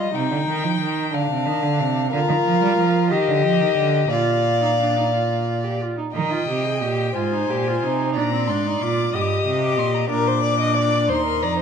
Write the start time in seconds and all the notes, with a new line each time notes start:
Already playing: G3 F4 D#5
0.14 C3 D#4 G5
0.31 D3
0.48 D#3
0.64 F3
0.81 D#3
1.13 D3 D4 F5
1.30 C3
1.46 D#3
1.63 D3
1.80 C3
2.12 D3 F4 A#4 F5
2.29 D#3
2.46 F3
2.62 G3
2.78 F3
3.11 D#3 G4 D#5
3.28 D3
3.44 F3
3.61 D#3
3.77 D3
4.10 A#2 F4 D5 F5
4.62 D#4
4.79 D4
4.96 D#4
5.13 F4
5.64 G4
5.81 F4
5.97 D#4
6.14 D#3 D#4 D#5 G5
6.31 F4
6.47 C3 G4
6.64 G#4
6.82 A#2 G4
7.15 G#2 F4 C5 G#5
7.32 D#4
7.50 A#2 G4
7.67 F4
7.83 C3 D#4
8.15 A#2 D4 D5 A#5
8.32 C4
8.47 G#2 D4 C6
8.66 D#4
8.81 A#2 F4 D6
9.13 G2 G4 D#5 D#6
9.21 D6
9.27 D#6
9.46 C3
9.61 D6
9.78 A#2 C6
9.94 A#5
10.10 A#2 D4 A#4 D6
10.27 C5
10.43 D5
10.60 D#5
10.77 D5
11.09 D#2 D#4 C5 C6
11.26 A#4
11.43 F2 D5 A#5